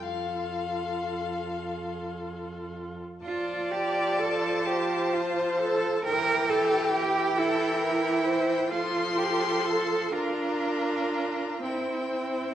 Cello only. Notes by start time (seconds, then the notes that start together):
0.02 F2
3.23 F4
3.71 G4
4.19 A4
4.66 G4
5.14 F4
5.59 A4
6.05 A#4
6.49 A4
6.93 G4
7.38 E4
8.69 F4
9.17 G4
9.65 A4
10.13 F4
11.63 E4